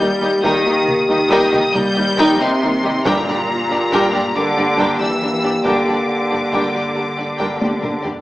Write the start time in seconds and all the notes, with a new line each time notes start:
Already playing: G3 A#3 G4 G6
0.00 G3 D#4
0.22 D#2 G3 D#4 G4 D#5
0.43 D#2 D#3 G3 D#4 A#4 G5 D#6, taiko
0.65 D#2 G3 D#4 G4 D#5
0.88 taiko mid
1.08 D#2 D#3 G3 D#4 G4 D#5 D#6
1.30 D#2 G3 D#4 A#4 G5, taiko
1.52 D#2 G3 D#4 G4 D#5, taiko mid
1.74 D#2 G3 D#4 A#4 G6, taiko mid
1.95 D#2 G3 D#4 G4 D#5
2.18 D#2 G3 D#4 A#4 G5, taiko
2.39 D#2 C3 G3 D#4 G4 D#5 C6
2.62 D#2 G3 D#4 A#4
2.83 D#2 G3 D#4 G4 D#5
3.04 G2 A#2 G3 A#3 D4 G4 A#4 G5 A#5, taiko
3.27 G2 G3 D4 G4 D5
3.70 G2 G3 D4 G4 D5
3.92 G2 G3 D4 A#4 G5, taiko
4.13 G2 G3 D4 G4 D5
4.35 G2 D3 G3 D4 A#4 D6
4.57 G2 G3 D4 G4 D5
4.78 G2 G3 D4 A#4 G5, taiko
4.99 G2 E3 G3 D4 G4 D5 E6
5.21 G2 G3 D4 A#4
5.43 G2 G3 D4 G4 D5
5.64 G2 D3 G3 D4 A#4 G5 D6, taiko
5.86 G2 G3 D4 G4 D5
6.31 G2 G3 D4 G4 D5
6.52 G2 G3 D4 A#4 G5, taiko
6.74 G2 G3 D4 G4 D5
6.95 G2 G3 D4 A#4
7.17 G2 G3 D4 G4 D5
7.38 G2 G3 D4 A#4 G5, taiko
7.59 G2 G3 D4 G4 D5, taiko high
7.81 G2 G3 D4 A#4, taiko low-mid
8.03 G2 G3 D4 G4 D5, taiko low